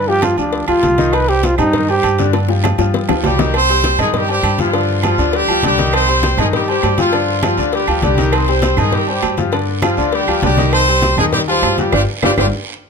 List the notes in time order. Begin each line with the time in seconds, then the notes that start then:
Already playing: G2
0.08 F3 F4 G4, high conga
0.22 F4, cowbell, high conga, low agogo, short guiro, claves
0.37 D2 F3 D4 F4 G4, low agogo, short guiro
0.53 cowbell, high conga, long guiro
0.68 D2 F3 F4 G4, high conga, low agogo, claves
0.83 C2, cowbell, high conga, low agogo, short guiro
0.98 D#3 D#4 D#5, cowbell, high conga, short guiro
1.13 B4, cowbell, high conga, low agogo, long guiro, claves
1.28 G3 G4 C5, cowbell, high conga
1.43 F4, cowbell, high conga, low agogo, short guiro
1.58 G2 G3 D#4 G4 C5, low conga, low agogo, short guiro, claves
1.73 D#3 D#4 D#5, cowbell, high conga, low conga, long guiro
1.89 G3 G4 C5, high conga, low agogo
2.03 G2, cowbell, high conga, low agogo, short guiro, claves
2.18 D3 D4 D5, cowbell, high conga, short guiro
2.33 D3 D4 D5, cowbell, high bongo, low agogo, long guiro
2.49 F3 F4 G4, high bongo, high conga
2.64 cowbell, high bongo, high conga, low agogo, short guiro, claves
2.78 G2 F3 F4 G4, high bongo, low agogo, short guiro
2.94 cowbell, low bongo, high conga, long guiro
3.09 D2 F3 F4 G4, low bongo, high timbale, low agogo, claves
3.23 C2 G3 G4, cowbell, high conga, low timbale, low agogo, short guiro
3.39 D#3 D#4 D#5, cowbell, low bongo, high conga, low timbale, short guiro
3.54 C4 C5, cowbell, high conga, low agogo, long guiro, claves
3.69 G3 G4 C5, cowbell, high conga
3.84 cowbell, high conga, low agogo, short guiro
3.98 G2 D#3 G#3 D#4 G#4 D#5, low conga, low agogo, short guiro, claves
4.11 G#3 G#4, cowbell, high conga, low conga, long guiro
4.16 G3 G4
4.29 G3 G4 C5, high conga, low agogo
4.43 G2, cowbell, high conga, low agogo, short guiro, claves
4.58 F3 F4 G4, cowbell, high conga, short guiro
4.73 D3 D4 D5, cowbell, high conga, low agogo, long guiro
4.89 high conga
5.03 F3 F4 G4, cowbell, high conga, low agogo, short guiro, claves
5.18 D2 D3 D4 D5, low agogo, short guiro
5.33 G3 G4, cowbell, high conga, long guiro
5.48 D2 F3 F4 G4, high conga, low agogo, claves
5.63 C2 D3 G3 D4 G4 D5, cowbell, high conga, low agogo, short guiro
5.78 D#3 D#4 D#5, cowbell, high conga, short guiro
5.93 C4 C5, cowbell, high conga, low agogo, long guiro, claves
6.08 G3 G4 C5, cowbell, high conga
6.23 cowbell, high conga, low agogo, short guiro
6.38 G2 D#3 G#3 D#4 G#4 D#5, low conga, low agogo, short guiro, claves
6.53 G3 G4, cowbell, high conga, low conga, long guiro
6.68 G3 G4 C5, high conga, low agogo
6.83 G2, cowbell, high conga, low timbale, low agogo, short guiro, claves
6.98 F3 F4 G4, cowbell, high conga, short guiro
7.12 D3 D4 D5, cowbell, high conga, low agogo, long guiro
7.28 high conga
7.43 F3 F4 G4, cowbell, high conga, low agogo, short guiro, claves
7.57 D2 D3 D4 D5, low agogo, short guiro
7.72 G3 G4, cowbell, high conga, long guiro
7.87 D2 F3 F4 G4, high conga, low agogo, claves
8.02 C2 D3 G3 D4 G4 D5, cowbell, high conga, low agogo, short guiro
8.18 D#3 D#4 D#5, cowbell, high conga, short guiro
8.32 C4 C5, cowbell, high conga, low agogo, long guiro, claves
8.48 G3 G4 C5, cowbell, high conga
8.62 cowbell, high conga, low agogo, short guiro
8.77 G2 D#3 G#3 D#4 G#4 D#5, low conga, low agogo, short guiro, claves
8.92 G3 G4, cowbell, high conga, low conga, long guiro
9.07 G3 G4 C5, high conga, low agogo
9.22 G2, cowbell, high conga, low timbale, low agogo, short guiro, claves
9.37 F3 F4 G4, cowbell, high conga, short guiro
9.52 D3 D4 D5, cowbell, low agogo, long guiro
9.68 high conga
9.82 F3 F4 G4, cowbell, high conga, low agogo, short guiro, claves
9.97 D2 D3 D4 D5, low agogo, short guiro
10.12 G3 G4, cowbell, high conga, long guiro
10.27 D2 F3 F4 G4, high conga, low agogo, claves
10.42 C2 D3 G3 D4 G4 D5, cowbell, high conga, low timbale, low agogo, short guiro
10.57 D#3 D#4 D#5, cowbell, high conga, short guiro
10.72 C4 C5, cowbell, high conga, low agogo, long guiro, claves
10.87 G3 G4 C5, cowbell, high conga
11.02 cowbell, high conga, low agogo, short guiro
11.17 D#2 D#3 G#3 D#4 G#4 D#5, low conga, low agogo, short guiro, claves
11.32 G3 G4, cowbell, high conga, low conga, long guiro
11.48 F3 G3 F4 G4 C5, high conga, low agogo
11.62 G2, cowbell, high conga, low timbale, low agogo, short guiro, claves
11.78 F3 G3 F4 G4, cowbell, high conga, short guiro
11.92 G1 G3 D4 F4 G4, cowbell, high conga, high timbale, long guiro, claves
12.22 G1 G3 D4 F4 G4, cowbell, high conga, high timbale, long guiro, claves
12.37 G1 G3 D4 F4 G4, cowbell, high conga, high timbale, long guiro, claves